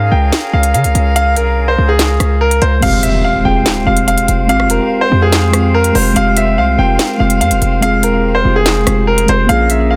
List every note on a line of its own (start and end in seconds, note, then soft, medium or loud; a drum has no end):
0.00 0.11 G#2 loud
0.00 2.79 C#4 medium
0.00 2.52 G#4 medium
0.00 2.79 A#4 medium
0.00 0.10 F5 medium
0.00 2.79 F5 medium
0.11 0.32 C#2 loud
0.11 0.51 G5 medium
0.32 snare loud
0.32 clap medium
0.32 closed hi-hat medium
0.53 0.76 C#2 loud
0.53 0.72 F5 medium
0.63 closed hi-hat medium
0.74 0.86 C#3 loud
0.74 1.13 F5 medium
0.74 closed hi-hat medium
0.84 0.95 C#2 loud
0.84 closed hi-hat medium
0.95 1.38 C#2 loud
0.95 closed hi-hat medium
1.16 1.35 F5 loud
1.16 closed hi-hat medium
1.36 1.76 C2 loud
1.36 1.66 A#4 medium
1.36 closed hi-hat medium
1.68 1.87 C5 medium
1.78 2.18 C#2 loud
1.89 2.38 G#4 medium
1.99 snare loud
1.99 clap medium
1.99 closed hi-hat medium
2.20 2.60 C#2 loud
2.20 cross-stick loud
2.20 closed hi-hat medium
2.41 2.60 A#4 medium
2.51 closed hi-hat medium
2.62 2.82 C#2 loud
2.62 2.81 C5 medium
2.62 closed hi-hat soft
2.62 open hi-hat medium
2.80 3.43 F1 loud
2.80 3.21 G#3 loud
2.80 3.22 C4 medium
2.80 9.45 F4 medium
2.80 3.23 F4 medium
2.80 9.45 C5 medium
2.80 3.02 F5 loud
2.80 9.23 F5 loud
2.80 9.27 G5 medium
2.80 closed hi-hat medium
2.80 crash loud
2.80 impact medium
2.85 3.24 G4 loud
3.03 3.22 E5 medium
3.03 closed hi-hat medium
3.24 3.44 F5 medium
3.43 3.65 F1 loud
3.43 3.71 G#3 medium
3.43 3.71 C4 medium
3.43 3.72 F4 medium
3.43 3.84 G5 medium
3.48 3.73 G#4 medium
3.66 snare loud
3.66 clap medium
3.66 closed hi-hat medium
3.85 4.19 F1 loud
3.85 4.26 G#3 medium
3.85 4.27 C4 medium
3.85 4.27 F4 medium
3.85 4.06 F5 medium
3.89 4.28 G4 medium
3.97 closed hi-hat medium
4.08 4.47 F5 medium
4.08 closed hi-hat medium
4.18 4.28 E1 loud
4.18 closed hi-hat medium
4.28 4.51 F1 loud
4.28 closed hi-hat medium
4.47 4.66 G#1 loud
4.47 4.68 G#3 loud
4.47 4.69 C4 medium
4.47 4.70 F4 loud
4.47 4.68 F5 loud
4.47 closed hi-hat medium
4.52 4.70 G4 loud
4.60 cross-stick medium
4.65 4.80 F1 loud
4.70 5.00 A#4 medium
4.70 closed hi-hat medium
4.78 4.99 G#3 medium
4.78 5.00 C4 medium
4.78 5.01 F4 medium
4.83 5.02 G4 medium
5.01 5.20 C5 medium
5.09 5.92 F2 loud
5.09 5.37 G#3 medium
5.09 5.38 C4 medium
5.09 5.39 F4 medium
5.14 5.40 G4 medium
5.22 5.71 G#4 medium
5.32 snare loud
5.32 clap medium
5.32 closed hi-hat medium
5.51 5.79 G#3 medium
5.51 5.80 C4 medium
5.51 5.81 F4 medium
5.51 cross-stick loud
5.51 closed hi-hat medium
5.56 5.81 G4 medium
5.74 5.94 A#4 medium
5.84 closed hi-hat medium
5.92 6.15 F1 loud
5.92 6.07 G#3 medium
5.92 6.08 C4 medium
5.92 6.09 F4 medium
5.92 6.14 C5 medium
5.92 open hi-hat medium
5.97 6.10 G4 medium
6.13 6.59 F1 loud
6.13 6.55 G#3 loud
6.13 6.55 C4 medium
6.13 6.56 F4 medium
6.13 6.35 F5 loud
6.13 closed hi-hat medium
6.18 6.57 G4 loud
6.37 6.56 E5 medium
6.37 closed hi-hat medium
6.58 6.77 C2 loud
6.58 6.77 F5 medium
6.76 6.98 F1 loud
6.76 7.04 G#3 medium
6.76 7.05 C4 medium
6.76 7.06 F4 medium
6.76 7.18 G5 medium
6.81 7.06 A#4 medium
6.99 snare loud
6.99 clap medium
6.99 closed hi-hat medium
7.17 7.42 F1 loud
7.17 7.59 G#3 medium
7.17 7.60 C4 medium
7.17 7.61 F4 medium
7.17 7.39 F5 medium
7.22 7.61 G4 medium
7.30 closed hi-hat medium
7.41 7.53 F2 loud
7.41 7.80 F5 medium
7.41 closed hi-hat medium
7.51 7.61 F1 loud
7.51 closed hi-hat medium
7.62 8.05 F1 loud
7.62 closed hi-hat medium
7.80 8.01 G#3 loud
7.80 8.02 C4 loud
7.80 8.03 F4 loud
7.80 8.02 F5 loud
7.80 closed hi-hat medium
7.85 8.04 G#4 loud
8.03 8.43 E1 loud
8.03 8.33 A#4 medium
8.03 closed hi-hat medium
8.12 8.33 G#3 medium
8.12 8.34 C4 medium
8.12 8.34 F4 medium
8.17 8.35 G4 medium
8.35 8.54 C5 medium
8.43 8.85 F1 loud
8.43 8.71 G#3 medium
8.43 8.72 C4 medium
8.43 8.72 F4 medium
8.48 8.73 G4 medium
8.56 9.05 G#4 medium
8.66 snare loud
8.66 clap medium
8.66 closed hi-hat medium
8.84 9.27 F1 loud
8.84 9.12 G#3 medium
8.84 9.13 C4 medium
8.84 9.14 F4 medium
8.84 cross-stick loud
8.84 closed hi-hat medium
8.89 9.15 G4 medium
9.07 9.27 A#4 medium
9.18 closed hi-hat medium
9.26 9.48 F1 loud
9.26 9.41 G#3 medium
9.26 9.41 C4 medium
9.26 9.42 F4 medium
9.26 9.48 C5 medium
9.26 closed hi-hat soft
9.26 open hi-hat medium
9.31 9.43 G4 medium
9.47 9.96 A#1 loud
9.47 9.88 A#3 loud
9.47 9.89 C#4 medium
9.47 9.90 F4 loud
9.47 9.96 G#4 medium
9.47 9.96 A#4 medium
9.47 9.96 C#5 medium
9.47 9.68 F5 loud
9.47 closed hi-hat medium
9.52 9.90 G#4 loud
9.70 9.89 E5 medium
9.70 closed hi-hat medium
9.91 9.96 F5 medium